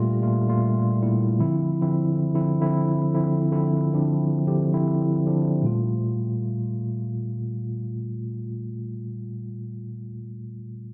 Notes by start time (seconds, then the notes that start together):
Already playing: A#2 G3 A3 F4 G4
0.22 A#2 G3 A3 F4
0.48 A#2 G3 A3 F4
1.02 A#2 G3 A3 E4
1.39 D3 F3 C4 E4
1.81 D3 F3 C4 E4
2.34 D3 F3 C4 E4
2.61 D3 F3 C4 E4
3.14 D3 F3 C4 E4
3.52 D3 F3 C4 E4
3.94 D3 F3 C4 D4
4.47 D3 F3 C4 G4
4.73 D3 F3 C4 E4
5.26 D3 F3 C4 D4
5.62 A#2 G3 A3
5.67 F4